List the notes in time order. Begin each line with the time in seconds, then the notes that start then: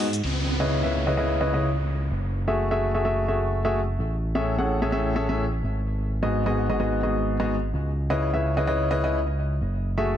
Already playing: G#2
0.00 open hi-hat
0.13 closed hi-hat, shaker
0.24 C#2, crash, downlifter
0.60 C#3 C#4 E4 B4 D#5
0.83 C#3 C#4 E4 B4 E5
1.07 C#3 C#4 E4 B4 D#5
1.17 C#3 C#4 E4 B4 D#5
1.41 C#3 C#4 E4 B4 D#5
1.54 C#3 C#4 E4 B4 D#5
2.11 F#1
2.48 A3 F#4 G#4 E5
2.71 A3 F#4 G#4 E5
2.94 A3 F#4 G#4 E5
3.05 A3 F#4 G#4 E5
3.28 A3 F#4 G#4 E5
3.65 A3 F#4 G#4 E5
3.99 A1
4.35 A2 C#4 G#4 A4 E5
4.58 A2 C#4 G#4 A4 F#5
4.82 A2 C#4 G#4 A4 E5
4.92 A2 C#4 G#4 A4 E5
5.16 A2 C#4 G#4 A4 E5
5.29 A2 C#4 G#4 A4 E5
5.63 G#1
6.23 G#2 B3 F#4 G#4 D#5
6.46 G#2 B3 F#4 G#4 D#5
6.69 G#2 B3 F#4 G#4 D#5
6.80 G#2 B3 F#4 G#4 D#5
7.03 G#2 B3 F#4 G#4 D#5
7.40 G#2 B3 F#4 G#4 D#5
7.74 C#2
8.10 C#3 C#4 E4 B4 D#5
8.33 C#3 C#4 E4 B4 E5
8.57 C#3 C#4 E4 B4 D#5
8.67 C#3 C#4 E4 B4 D#5
8.91 C#3 C#4 E4 B4 D#5
9.04 C#3 C#4 E4 B4 D#5
9.61 F#1
9.98 A3 F#4 G#4 E5